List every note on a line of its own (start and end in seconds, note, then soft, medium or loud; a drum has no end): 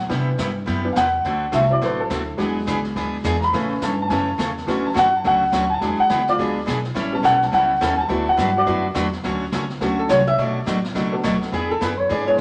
0.08 0.30 C3 medium
0.08 0.38 C3 medium
0.08 0.53 E3 medium
0.08 0.30 G3 medium
0.08 0.53 B3 soft
0.08 0.30 B3 medium
0.08 0.54 D4 medium
0.08 0.30 E4 medium
0.08 0.30 G4 medium
0.08 brush sweep medium
0.08 kick soft
0.08 snare soft
0.38 0.66 G2 medium
0.38 0.50 C3 medium
0.38 0.50 G3 medium
0.38 0.50 B3 medium
0.38 0.50 E4 medium
0.38 0.50 G4 medium
0.38 kick soft
0.38 snare medium
0.38 hi-hat pedal medium
0.66 0.95 F#2 medium
0.66 0.86 C3 medium
0.66 0.87 G3 medium
0.66 0.87 B3 medium
0.66 0.87 E4 medium
0.66 0.87 G4 medium
0.66 brush sweep medium
0.66 kick soft
0.66 snare soft
0.84 0.94 E3 soft
0.84 0.95 B3 soft
0.84 0.95 D4 soft
0.93 1.23 E2 medium
0.93 1.07 C3 medium
0.93 1.07 G3 medium
0.93 1.07 B3 medium
0.93 0.95 F5 medium
0.93 kick soft
0.93 snare medium
0.93 hi-hat pedal medium
0.97 1.08 E4 medium
0.97 1.08 G4 medium
0.97 1.52 F#5 medium
1.24 1.52 D2 medium
1.24 1.45 D3 medium
1.24 1.45 A3 medium
1.24 1.45 C4 medium
1.24 1.45 F#4 medium
1.24 1.45 A4 medium
1.24 brush sweep medium
1.24 kick soft
1.24 snare soft
1.52 1.81 C2 loud
1.52 1.64 D3 medium
1.52 1.64 A3 medium
1.52 1.65 C4 medium
1.52 1.65 F#4 medium
1.52 1.65 A4 medium
1.52 1.71 E5 medium
1.52 kick soft
1.52 snare medium
1.52 hi-hat pedal medium
1.69 2.35 F#3 medium
1.69 2.35 C4 soft
1.69 2.35 E4 medium
1.69 1.82 D5 medium
1.81 2.09 A1 medium
1.81 2.01 D3 medium
1.81 2.01 A3 medium
1.81 2.01 C4 medium
1.81 2.02 F#4 medium
1.81 2.02 A4 medium
1.81 2.00 B4 medium
1.81 brush sweep soft
1.81 kick soft
1.81 snare soft
2.00 2.38 A4 medium
2.10 2.38 D2 loud
2.10 2.21 D3 medium
2.10 2.21 A3 medium
2.10 2.22 C4 medium
2.10 2.22 F#4 medium
2.10 2.22 A4 medium
2.10 kick soft
2.10 snare medium
2.10 hi-hat pedal medium
2.37 2.66 E2 medium
2.37 2.58 E3 medium
2.37 3.48 F#3 medium
2.37 3.48 G#3 medium
2.37 2.58 B3 medium
2.37 3.49 D4 medium
2.37 2.59 D4 medium
2.37 2.59 G#4 medium
2.37 brush sweep medium
2.37 kick soft
2.37 snare soft
2.67 2.95 C#2 loud
2.67 2.78 E3 medium
2.67 2.79 B3 medium
2.67 2.79 D4 medium
2.67 2.79 G#4 medium
2.67 kick soft
2.67 snare medium
2.67 hi-hat pedal medium
2.84 snare soft
2.96 3.23 D2 medium
2.96 3.16 E3 medium
2.96 3.16 B3 medium
2.96 3.16 D4 medium
2.96 3.16 G#4 medium
2.96 brush sweep soft
2.96 kick soft
2.96 snare soft
3.24 3.52 E2 medium
3.24 3.35 E3 medium
3.24 3.36 B3 medium
3.24 3.36 D4 medium
3.24 3.36 G#4 medium
3.24 kick soft
3.24 snare medium
3.24 hi-hat pedal medium
3.39 3.41 A#5 medium
3.39 snare soft
3.44 3.81 B5 loud
3.53 3.81 A2 medium
3.53 3.73 C#3 medium
3.53 4.08 E3 medium
3.53 3.73 E3 medium
3.53 4.08 A3 medium
3.53 3.73 A3 medium
3.53 3.73 C#4 medium
3.53 4.09 C#4 medium
3.53 3.74 A4 medium
3.53 brush sweep medium
3.53 kick soft
3.53 snare soft
3.82 4.09 G2 medium
3.82 3.93 C#3 medium
3.82 3.93 E3 medium
3.82 3.93 A3 medium
3.82 3.94 C#4 medium
3.82 3.94 A4 medium
3.82 4.00 A5 medium
3.82 kick soft
3.82 snare medium
3.82 hi-hat pedal medium
4.02 4.11 A5 medium
4.08 4.38 F#2 medium
4.08 4.30 C#3 medium
4.08 4.26 E3 soft
4.08 4.30 E3 medium
4.08 4.26 A3 soft
4.08 4.30 A3 medium
4.08 4.26 C#4 medium
4.08 4.30 C#4 medium
4.08 4.10 G#5 medium
4.08 brush sweep soft
4.08 kick soft
4.08 snare soft
4.12 4.31 A4 medium
4.12 4.67 A5 medium
4.38 4.66 E2 medium
4.38 4.49 C#3 medium
4.38 4.50 E3 medium
4.38 4.50 A3 medium
4.38 4.50 C#4 medium
4.38 4.50 A4 medium
4.38 kick soft
4.38 snare medium
4.38 hi-hat pedal medium
4.57 snare soft
4.67 4.95 D2 medium
4.67 4.87 D3 medium
4.67 4.88 E3 medium
4.67 4.88 F#3 soft
4.67 4.87 F#3 medium
4.67 4.87 A3 medium
4.67 4.89 C#4 medium
4.67 4.87 C#4 medium
4.67 4.88 F#4 medium
4.67 brush sweep medium
4.67 kick soft
4.67 snare medium
4.86 4.96 A5 medium
4.94 5.23 F#2 medium
4.94 5.06 D3 medium
4.94 5.06 F#3 medium
4.94 5.07 A3 medium
4.94 5.07 C#4 medium
4.94 5.07 F#4 medium
4.94 kick soft
4.94 snare medium
4.94 hi-hat pedal medium
4.99 5.14 F#5 loud
5.16 5.25 A5 medium
5.24 5.52 C#2 medium
5.24 5.44 D3 medium
5.24 5.44 F#3 medium
5.24 5.44 A3 medium
5.24 5.44 C#4 medium
5.24 5.45 F#4 medium
5.24 5.71 F#5 medium
5.24 brush sweep medium
5.24 kick soft
5.24 snare soft
5.52 5.80 D2 medium
5.52 5.64 D3 medium
5.52 5.64 F#3 medium
5.52 5.64 A3 medium
5.52 5.64 C#4 medium
5.52 5.64 F#4 medium
5.52 kick soft
5.52 snare medium
5.52 hi-hat pedal medium
5.74 6.00 A5 loud
5.80 5.98 E2 medium
5.80 6.01 E3 medium
5.80 6.37 F#3 soft
5.80 6.37 G#3 medium
5.80 6.02 B3 medium
5.80 6.37 D4 medium
5.80 6.02 D4 medium
5.80 6.02 G#4 medium
5.80 brush sweep soft
5.80 kick soft
5.80 snare soft
5.99 6.27 F#5 medium
5.99 muted upright bass stroke soft
6.09 6.37 C#2 loud
6.09 6.21 E3 medium
6.09 6.21 B3 medium
6.09 6.21 D4 medium
6.09 6.22 G#4 medium
6.09 kick soft
6.09 snare medium
6.09 hi-hat pedal medium
6.27 6.55 F4 medium
6.27 6.56 D5 loud
6.27 snare soft
6.38 6.66 D2 medium
6.38 6.58 E3 medium
6.38 6.54 F#3 soft
6.38 6.55 G#3 soft
6.38 6.59 B3 medium
6.38 6.55 D4 medium
6.38 6.59 D4 medium
6.38 6.59 G#4 medium
6.38 brush sweep soft
6.38 kick soft
6.38 snare soft
6.66 6.95 B1 medium
6.66 6.78 E3 medium
6.66 6.78 B3 medium
6.66 6.78 D4 medium
6.66 6.78 G#4 medium
6.66 kick soft
6.66 snare medium
6.66 hi-hat pedal medium
6.84 snare soft
6.95 7.23 A1 medium
6.95 7.15 E3 medium
6.95 7.15 G3 medium
6.95 7.15 C#4 medium
6.95 7.15 E4 medium
6.95 7.16 A4 medium
6.95 brush sweep soft
6.95 kick soft
6.95 snare soft
7.12 8.05 G3 medium
7.12 8.06 B3 soft
7.12 8.06 C#4 medium
7.12 7.25 A5 medium
7.23 7.52 B1 loud
7.23 7.35 E3 medium
7.23 7.35 G3 medium
7.23 7.35 C#4 medium
7.23 7.35 E4 medium
7.23 7.35 A4 medium
7.23 7.42 F#5 loud
7.23 kick soft
7.23 snare medium
7.23 hi-hat pedal medium
7.42 7.53 A5 medium
7.42 snare soft
7.51 7.80 C#2 medium
7.51 7.72 E3 medium
7.51 7.72 G3 medium
7.51 7.72 C#4 medium
7.51 7.73 E4 medium
7.51 7.73 A4 medium
7.51 7.98 F#5 medium
7.51 brush sweep medium
7.51 kick soft
7.51 snare medium
7.81 8.09 D#2 loud
7.81 7.92 E3 medium
7.81 7.92 G3 medium
7.81 7.92 C#4 medium
7.81 7.93 E4 medium
7.81 7.93 A4 medium
7.81 kick soft
7.81 snare medium
7.81 hi-hat pedal medium
7.96 7.98 G#5 medium
8.00 8.27 A5 loud
8.08 8.37 D2 medium
8.08 8.29 D3 medium
8.08 8.53 F#3 medium
8.08 8.29 F#3 medium
8.08 8.29 A3 medium
8.08 8.54 B3 soft
8.08 8.29 D4 medium
8.08 8.54 E4 medium
8.08 8.29 F#4 medium
8.08 8.30 B4 medium
8.08 brush sweep soft
8.08 kick soft
8.08 snare soft
8.29 8.56 F#5 medium
8.37 8.66 G2 medium
8.37 8.49 D3 medium
8.37 8.49 F#3 medium
8.37 8.49 A3 medium
8.37 8.49 D4 medium
8.37 8.50 F#4 medium
8.37 8.49 B4 medium
8.37 kick soft
8.37 snare medium
8.37 hi-hat pedal medium
8.57 8.83 F#4 medium
8.57 8.85 D5 loud
8.66 8.95 F#2 medium
8.66 8.86 D3 medium
8.66 8.82 F#3 soft
8.66 8.87 F#3 medium
8.66 8.87 A3 medium
8.66 8.83 B3 soft
8.66 8.87 D4 medium
8.66 8.83 E4 medium
8.66 8.87 F#4 medium
8.66 8.87 B4 medium
8.66 brush sweep soft
8.66 kick soft
8.66 snare soft
8.94 9.23 E2 medium
8.94 9.06 D3 medium
8.94 9.06 F#3 medium
8.94 9.06 A3 medium
8.94 9.06 D4 medium
8.94 9.07 F#4 medium
8.94 9.07 B4 medium
8.94 kick soft
8.94 snare medium
8.94 hi-hat pedal medium
9.13 snare soft
9.24 9.51 D2 medium
9.24 9.44 D3 medium
9.24 9.44 F#3 medium
9.24 9.44 A3 medium
9.24 9.44 C#4 medium
9.24 9.44 F#4 medium
9.24 brush sweep medium
9.24 kick soft
9.24 snare soft
9.52 9.80 C#2 medium
9.52 9.64 D3 medium
9.52 9.64 F#3 medium
9.52 9.64 A3 medium
9.52 9.64 C#4 medium
9.52 9.64 F#4 medium
9.52 kick soft
9.52 snare medium
9.52 hi-hat pedal medium
9.70 snare soft
9.80 10.09 D2 medium
9.80 10.01 D3 medium
9.80 10.01 F#3 medium
9.80 10.23 A3 medium
9.80 10.01 A3 medium
9.80 10.24 C#4 medium
9.80 10.01 C#4 medium
9.80 10.24 D4 medium
9.80 10.24 F#4 medium
9.80 10.02 F#4 medium
9.80 10.24 A4 medium
9.80 brush sweep soft
9.80 kick soft
9.80 snare soft
9.99 10.10 A4 medium
10.09 10.37 C2 medium
10.09 10.20 D3 medium
10.09 10.21 F#3 medium
10.09 10.21 A3 medium
10.09 10.21 C#4 medium
10.09 10.21 F#4 medium
10.09 10.27 C#5 medium
10.09 kick soft
10.09 snare medium
10.09 hi-hat pedal medium
10.27 10.38 E5 loud
10.27 snare soft
10.38 10.66 B1 medium
10.38 10.58 B2 medium
10.38 10.58 F#3 medium
10.38 10.58 A3 medium
10.38 10.58 D4 medium
10.38 10.59 F#4 medium
10.38 10.92 D5 medium
10.38 brush sweep medium
10.38 kick soft
10.38 snare soft
10.66 10.94 A1 medium
10.66 10.78 B2 medium
10.66 10.78 F#3 medium
10.66 10.78 A3 medium
10.66 10.78 D4 medium
10.66 10.78 F#4 medium
10.66 kick soft
10.66 snare medium
10.66 hi-hat pedal medium
10.84 snare soft
10.94 11.23 C#2 medium
10.94 11.15 B2 medium
10.94 11.15 F#3 medium
10.94 11.15 A3 medium
10.94 11.15 D4 medium
10.94 11.15 F#4 medium
10.94 brush sweep medium
10.94 kick soft
10.94 snare soft
11.11 11.49 A3 medium
11.11 11.50 B3 medium
11.11 11.50 D4 medium
11.11 11.50 F#4 medium
11.11 11.50 A4 medium
11.23 11.52 D2 medium
11.23 11.35 B2 medium
11.23 11.35 F#3 medium
11.23 11.35 A3 medium
11.23 11.35 D4 medium
11.23 11.35 F#4 medium
11.23 kick soft
11.23 snare medium
11.23 hi-hat pedal medium
11.42 snare soft
11.52 11.80 E2 medium
11.52 11.72 E3 medium
11.52 11.72 B3 medium
11.52 11.73 D4 medium
11.52 11.73 G#4 medium
11.52 11.70 G#4 medium
11.52 brush sweep soft
11.52 kick soft
11.52 snare soft
11.71 11.81 A4 medium
11.81 12.09 F#2 medium
11.81 11.92 E3 medium
11.81 11.92 B3 medium
11.81 11.92 D4 medium
11.81 11.93 G#4 medium
11.81 12.00 B4 medium
11.81 kick soft
11.81 snare medium
11.81 hi-hat pedal medium
12.00 12.10 C#5 medium
12.09 12.37 G#2 medium
12.09 12.29 E3 medium
12.09 12.29 B3 medium
12.09 12.30 D4 medium
12.09 12.30 G#4 medium
12.09 12.27 D5 loud
12.09 brush sweep medium
12.09 kick soft
12.09 snare soft
12.26 12.41 G#3 medium
12.26 12.41 B3 medium
12.26 12.41 D4 medium
12.26 12.41 E4 medium
12.26 12.41 G#4 medium
12.26 12.39 C#5 loud